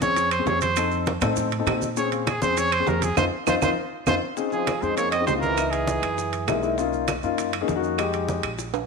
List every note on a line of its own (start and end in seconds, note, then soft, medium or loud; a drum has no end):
0.01 0.43 F2 medium
0.01 0.28 C4 medium
0.01 0.28 C#4 medium
0.01 0.28 G#4 medium
0.01 0.30 C#5 loud
0.01 high bongo soft
0.01 high conga loud
0.01 maracas medium
0.17 high bongo medium
0.17 high conga soft
0.17 high timbale medium
0.17 maracas medium
0.31 0.48 C5 medium
0.31 high conga soft
0.31 high timbale medium
0.31 claves medium
0.31 maracas soft
0.39 0.65 C4 medium
0.39 0.66 C#4 medium
0.39 0.66 G#4 medium
0.46 1.16 F2 medium
0.46 0.61 C#5 medium
0.46 high bongo medium
0.46 low bongo medium
0.46 high conga medium
0.46 low timbale medium
0.46 maracas soft
0.61 1.04 C5 medium
0.61 high bongo soft
0.61 high conga medium
0.61 high timbale medium
0.61 maracas medium
0.76 1.08 C4 medium
0.76 1.09 D#4 medium
0.76 1.09 A4 medium
0.76 high bongo medium
0.76 high conga soft
0.76 high timbale medium
0.76 claves medium
0.76 maracas medium
0.91 high bongo soft
0.91 high conga soft
0.91 maracas soft
1.06 high bongo medium
1.06 high conga medium
1.06 high timbale medium
1.06 low timbale medium
1.06 maracas soft
1.21 1.64 A2 medium
1.21 1.48 C4 medium
1.21 1.48 D#4 medium
1.21 1.48 A4 loud
1.21 high bongo soft
1.21 high conga loud
1.21 low conga medium
1.21 high timbale medium
1.21 claves medium
1.21 maracas medium
1.36 high bongo medium
1.36 high conga soft
1.36 low conga medium
1.36 maracas medium
1.51 high bongo soft
1.51 high conga soft
1.51 high timbale medium
1.51 maracas soft
1.59 1.86 C4 medium
1.59 1.86 D#4 medium
1.59 1.86 A4 medium
1.66 2.36 A#2 medium
1.66 high bongo medium
1.66 low bongo medium
1.66 high conga medium
1.66 high timbale loud
1.66 low timbale medium
1.66 claves medium
1.66 maracas soft
1.82 high conga medium
1.82 maracas medium
1.97 2.29 C4 medium
1.97 2.29 C#4 medium
1.97 2.29 G#4 medium
1.97 2.11 C#5 medium
1.97 high bongo medium
1.97 high conga soft
1.97 maracas medium
2.12 2.28 F4 medium
2.12 high bongo soft
2.12 high conga soft
2.12 high timbale medium
2.12 maracas soft
2.27 2.42 G#4 medium
2.27 high bongo medium
2.27 high conga medium
2.27 high timbale medium
2.27 low timbale medium
2.27 claves medium
2.27 maracas soft
2.42 2.84 F2 medium
2.42 2.68 C4 medium
2.42 2.68 C#4 medium
2.42 2.69 G#4 medium
2.42 2.59 C5 medium
2.42 high bongo soft
2.42 high conga medium
2.42 maracas medium
2.57 2.74 C#5 loud
2.57 high bongo medium
2.57 high conga soft
2.57 high timbale medium
2.57 maracas medium
2.72 2.90 C5 medium
2.72 high conga soft
2.72 high timbale medium
2.72 claves medium
2.72 maracas soft
2.80 3.06 C4 medium
2.80 3.06 C#4 medium
2.80 3.06 G#4 medium
2.87 3.15 F2 medium
2.87 3.05 A#4 medium
2.87 high bongo medium
2.87 low bongo medium
2.87 high conga medium
2.87 low timbale medium
2.87 maracas soft
3.02 3.17 G#4 medium
3.02 high bongo soft
3.02 high conga medium
3.02 high timbale medium
3.02 maracas medium
3.17 3.28 F2 medium
3.17 3.27 C4 medium
3.17 3.27 D#4 medium
3.17 3.27 F4 medium
3.17 3.25 C5 medium
3.17 low bongo loud
3.17 high conga loud
3.17 high timbale loud
3.17 claves loud
3.17 maracas medium
3.47 3.58 F2 medium
3.47 3.57 C4 loud
3.47 3.57 D#4 loud
3.47 3.57 F4 loud
3.47 3.55 C5 medium
3.47 low bongo loud
3.47 high conga loud
3.47 high timbale loud
3.47 claves loud
3.47 maracas loud
3.62 3.73 F2 medium
3.62 3.72 C4 medium
3.62 3.72 D#4 medium
3.62 3.72 F4 loud
3.62 3.70 C5 medium
3.62 low bongo loud
3.62 high conga loud
3.62 high timbale loud
3.62 claves medium
3.62 maracas medium
4.07 4.18 F2 loud
4.07 4.17 C4 medium
4.07 4.17 D#4 medium
4.07 4.17 F4 medium
4.07 4.15 C5 medium
4.07 low bongo loud
4.07 high conga loud
4.07 high timbale loud
4.07 claves medium
4.07 maracas loud
4.37 4.69 C4 medium
4.37 4.69 C#4 medium
4.37 4.69 D#4 medium
4.37 4.69 G#4 medium
4.37 high bongo medium
4.37 high conga soft
4.37 maracas medium
4.52 4.83 F3 medium
4.52 4.83 G#4 medium
4.52 high bongo soft
4.52 high conga soft
4.52 maracas soft
4.67 high bongo medium
4.67 high conga medium
4.67 high timbale medium
4.67 claves medium
4.67 maracas medium
4.82 5.24 F2 medium
4.82 4.96 G#3 medium
4.82 5.09 C4 medium
4.82 5.09 C#4 medium
4.82 5.09 D#4 medium
4.82 5.09 G#4 medium
4.82 4.96 C5 medium
4.82 high bongo soft
4.82 high conga soft
4.82 maracas soft
4.97 5.11 A#3 medium
4.97 5.11 C#5 medium
4.97 high bongo medium
4.97 high conga soft
4.97 high timbale medium
4.97 maracas medium
5.11 5.26 C4 medium
5.11 5.26 D#5 medium
5.11 high bongo soft
5.11 high conga soft
5.11 high timbale medium
5.11 claves medium
5.11 maracas soft
5.20 5.31 C4 medium
5.20 5.31 C#4 medium
5.20 5.31 D#4 medium
5.20 5.31 G#4 medium
5.26 5.97 C#2 medium
5.26 5.34 G#3 medium
5.26 5.33 C5 medium
5.26 high bongo medium
5.26 low bongo medium
5.26 high conga medium
5.26 low timbale medium
5.26 maracas medium
5.34 5.57 C4 medium
5.34 5.57 C#4 medium
5.34 5.57 D#4 medium
5.34 5.58 F4 medium
5.41 5.71 E3 medium
5.41 5.73 A#4 medium
5.41 high conga medium
5.41 maracas soft
5.57 6.06 B3 medium
5.57 6.06 D#4 medium
5.57 6.06 E4 medium
5.57 high bongo medium
5.57 high conga soft
5.57 high timbale medium
5.57 claves medium
5.57 maracas medium
5.71 6.62 E3 medium
5.71 6.62 G#4 medium
5.71 high bongo soft
5.71 high conga soft
5.71 high timbale medium
5.71 maracas soft
5.88 high bongo medium
5.88 high conga medium
5.88 maracas medium
6.02 6.44 F#2 medium
6.02 high bongo soft
6.02 high conga soft
6.02 high timbale medium
6.02 claves medium
6.02 maracas soft
6.18 high bongo medium
6.18 high conga soft
6.18 maracas medium
6.33 high conga soft
6.33 high timbale medium
6.33 maracas soft
6.47 7.17 B1 medium
6.47 6.59 G#3 medium
6.47 6.59 A#3 medium
6.47 6.59 D#4 medium
6.47 6.59 E4 medium
6.47 high bongo medium
6.47 low bongo medium
6.47 high conga medium
6.47 high timbale medium
6.47 low timbale medium
6.47 claves medium
6.47 maracas medium
6.63 6.74 G#3 medium
6.63 6.74 A#3 medium
6.63 6.74 D#4 medium
6.63 6.74 E4 medium
6.63 high bongo soft
6.63 high conga soft
6.63 maracas soft
6.78 7.10 A#3 medium
6.78 7.10 C#4 medium
6.78 7.10 D#4 medium
6.78 7.10 F4 medium
6.78 high bongo medium
6.78 high conga soft
6.78 maracas medium
6.93 high bongo soft
6.93 high conga soft
6.93 maracas soft
7.08 high bongo medium
7.08 high conga medium
7.08 high timbale medium
7.08 claves medium
7.08 maracas medium
7.23 7.65 F#2 medium
7.23 7.50 A#3 medium
7.23 7.50 C#4 medium
7.23 7.50 D#4 medium
7.23 7.50 F4 medium
7.23 high bongo soft
7.23 high conga soft
7.23 maracas soft
7.38 high bongo medium
7.38 high conga soft
7.38 high timbale medium
7.38 maracas medium
7.53 high bongo soft
7.53 high conga soft
7.53 high timbale medium
7.53 claves medium
7.53 maracas soft
7.61 7.71 A#3 medium
7.61 7.72 C#4 medium
7.61 7.72 D#4 medium
7.61 7.72 G#4 medium
7.68 8.38 F2 medium
7.68 high bongo medium
7.68 low bongo medium
7.68 high conga medium
7.68 maracas medium
7.75 7.98 A#3 medium
7.75 7.98 C#4 medium
7.75 7.97 D#4 medium
7.75 7.99 F#4 medium
7.84 maracas soft
7.98 8.47 G#3 medium
7.98 8.47 D#4 medium
7.98 8.47 G4 medium
7.98 high bongo medium
7.98 high conga soft
7.98 high timbale medium
7.98 claves medium
7.98 maracas medium
8.14 high bongo soft
8.14 high conga soft
8.14 high timbale medium
8.14 maracas soft
8.29 high bongo medium
8.29 high conga medium
8.29 maracas medium
8.43 8.85 A#1 medium
8.43 high bongo soft
8.43 high conga soft
8.43 high timbale medium
8.43 claves medium
8.43 maracas soft
8.58 high bongo medium
8.58 high conga soft
8.58 maracas medium
8.74 high conga soft
8.74 high timbale loud
8.74 maracas soft